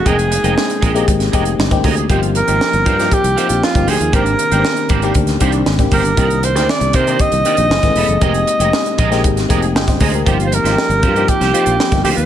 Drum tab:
HH |xxxx-xxxxxxx-xox|xxxx-xxxxxxx-xox|xxxx-xxxxxxx-xox|xxxx-xxxxxxx-xox|
SD |----o----o--o---|----o--o----o---|----o----o--o---|---oo-------oo--|
BD |o-----o-o-o--oo-|o-----o-o----o--|o-----o-o-o--oo-|o-----o-o----o--|

HH |xxxx-xxxxxxx-xox|xxxx-xxxxxxx-xox|
SD |----o--o-o--oo--|---oo----o--oo--|
BD |o-----o-o-o--oo-|o-----o-o----o--|